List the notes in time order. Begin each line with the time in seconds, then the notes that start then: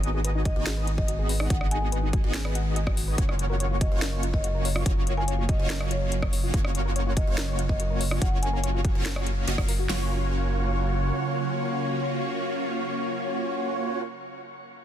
Already playing: G#1 D#3 G#3 B3 D#4 F#4 G#4 D#5
0.04 closed hi-hat
0.14 G#4
0.24 B4, closed hi-hat
0.35 D#4
0.45 F#4 D#5, kick, closed hi-hat
0.56 G#1 B3 D#4 F#4 G#4 D#5
0.66 G#4, snare, closed hi-hat
0.77 B4
0.87 D#4, closed hi-hat
0.98 D#5, kick
1.08 F#4, closed hi-hat
1.19 G#4
1.29 B4, open hi-hat
1.40 D#4, cross-stick
1.50 G#1 B3 D#4 F#4 G#4 D#5 F#5, kick, closed hi-hat
1.61 cross-stick
1.71 G#5, closed hi-hat
1.82 G#4
1.92 B4, closed hi-hat
2.03 D#4
2.13 F#4, kick, closed hi-hat
2.24 G#1 B3 D#4 F#4 G#4 D#5
2.34 G#4, snare, closed hi-hat
2.45 B4, cross-stick
2.55 F#5, closed hi-hat
2.76 D#5, closed hi-hat
2.87 F#4, kick, cross-stick
2.97 F#4, open hi-hat
3.08 B4
3.18 F#1 C#3 F#3 A#3 C#4 F4 F#4 C#5 F5, kick, closed hi-hat
3.29 cross-stick
3.39 closed hi-hat
3.50 A#4
3.60 C#5, closed hi-hat
3.71 F4
3.81 F#4 D#5, kick, closed hi-hat
3.92 F#1 A#3 C#4 F4 F#4 C#5
4.02 A#4, snare, closed hi-hat
4.13 C#5
4.23 F4, closed hi-hat
4.33 D#5, kick
4.44 F#4, closed hi-hat
4.55 A#4
4.65 C#5, open hi-hat
4.76 F4, cross-stick
4.86 F#1 A#3 C#4 F4 F#4 C#5, kick, closed hi-hat
5.07 closed hi-hat
5.17 A#4 G#5
5.28 C#5, closed hi-hat
5.38 F4
5.49 D#5, kick, closed hi-hat
5.59 F#1 A#3 C#4 F4 F#4 C#5 D#5
5.70 A#4, snare, closed hi-hat
5.80 C#5, cross-stick
5.91 F4 C#5, closed hi-hat
6.12 F#4, closed hi-hat
6.22 A#4, kick, cross-stick
6.33 C#5, open hi-hat
6.43 F4
6.54 F#1 A#3 C#4 F4 F#4 C#5, kick, closed hi-hat
6.65 cross-stick
6.75 closed hi-hat
6.85 A#4
6.96 C#5, closed hi-hat
7.07 F4
7.17 F#4 D#5, kick, closed hi-hat
7.27 F#1 A#3 C#4 F4 F#4 C#5
7.38 A#4, snare, closed hi-hat
7.48 C#5
7.59 F4, closed hi-hat
7.69 D#5, kick
7.80 F#4, closed hi-hat
7.90 A#4
8.01 C#5, open hi-hat
8.11 F4, cross-stick
8.22 F#1 A#3 C#4 F4 F#4 C#5 F#5, kick, closed hi-hat
8.42 G#5, closed hi-hat
8.53 A#4
8.64 C#5, closed hi-hat
8.74 F4
8.85 F#4, kick, closed hi-hat
8.95 F#1 A#3 C#4 F4 F#4 C#5
9.06 A#4, snare, closed hi-hat
9.16 C#5, cross-stick
9.27 F#4, closed hi-hat
9.47 F#1 A#3 C#4 F4 F#4 D#5, closed hi-hat
9.58 F#1 C#4 F#4, kick, cross-stick
9.69 A#4, open hi-hat
9.79 F#4
9.89 F#1 C#3 F#3 A#3 C#4 F4 F#4 C#5 F5, snare, open hi-hat